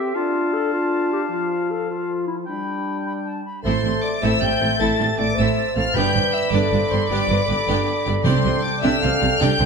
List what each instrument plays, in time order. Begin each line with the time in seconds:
Already playing: french horn section C4, clarinet G4, oboe E5, flute G5
0.15 french horn section D4, clarinet F4, oboe F5, flute A5
0.54 clarinet A4
0.73 clarinet F4
1.12 clarinet G4
1.30 french horn section F3, clarinet F4
1.71 clarinet A4
1.90 clarinet F4
2.27 clarinet E4
2.46 french horn section G3, clarinet D4, oboe G5, flute B5
3.06 flute B5
3.25 flute A5
3.45 flute B5
3.64 double bass section A1, cello section A2, viola section A3 C4, violin section E4 A4 C6, french horn section A4, flute C5, clarinet E5, oboe A5
3.84 double bass section A1, cello section A2, viola section A3 C4, violin section D4 G4
4.02 flute D5, violin section D6
4.21 double bass section A1, cello section A2, viola section A3 C4, violin section E4 A4 E6, french horn section C5, flute E5
4.40 double bass section A1, cello section A2, viola section A3 C4, violin section D4 G4 G6, flute G5
4.60 double bass section A1, cello section A2, viola section A3 C4, violin section E4 A4
4.79 double bass section A1, cello section A2, viola section A3 C4, violin section E4 A4 A6, french horn section A4, flute A5
4.99 double bass section A1, cello section A2, viola section A3 C4, violin section D4 G4
5.17 double bass section A1, cello section A2, viola section A3 C4, violin section E4 A4 D6, flute D5
5.35 double bass section A1, cello section A2, viola section A3 C4, french horn section C5, flute E5, violin section E6
5.40 violin section E4 A4
5.75 double bass section A1, cello section A2, viola section A3 C4, violin section E4 A4 F6, flute F5
5.94 double bass section G1, timpani G2, cello section G2, viola section B3 D4, violin section G4 D5 G6, french horn section B4, clarinet D5, flute G5, oboe B5
6.14 double bass section G1, cello section G2, viola section B3 D4, violin section F4 C5
6.34 flute E5, violin section E6
6.51 double bass section G1, cello section G2, viola section B3 D4, violin section G4 D5 D6, french horn section A4, flute D5
6.72 double bass section G1, cello section G2, viola section B3 D4, violin section F4 C5
6.89 double bass section G1, cello section G2, viola section B3 D4, violin section G4 D5 C6, flute C5
7.07 double bass section G1, cello section G2, viola section B3 D4, violin section G4 D5 D6, flute D5
7.12 french horn section G4
7.28 double bass section G1, cello section G2, viola section B3 D4, violin section F4 C5, french horn section B4
7.46 double bass section G1, cello section G2, viola section B3 D4, violin section G4 D5, french horn section A4
7.66 double bass section G1, cello section G2, viola section B3 D4, violin section G4 D5
8.05 double bass section G1, cello section G2, viola section B3 D4, violin section G4 D5
8.24 double bass section C2, timpani C3, cello section C3, viola section C4 D4, violin section G4 D5 C6, flute C5, oboe G5
8.45 double bass section C2, cello section C3, viola section C4 D4, violin section F4 C5
8.62 flute D5, violin section D6
8.81 double bass section C2, cello section C3, viola section C4 D4, violin section G4 D5 E6, flute E5
9.01 double bass section C2, cello section C3, viola section C4 D4, violin section F4 C5 F6, flute F5
9.19 double bass section C2, cello section C3, viola section C4 D4, violin section G4 D5
9.40 double bass section C2, cello section C3, viola section C4 D4, violin section G4 D5 G6, flute G5
9.59 double bass section C2, cello section C3, viola section C4 D4, violin section F4 C5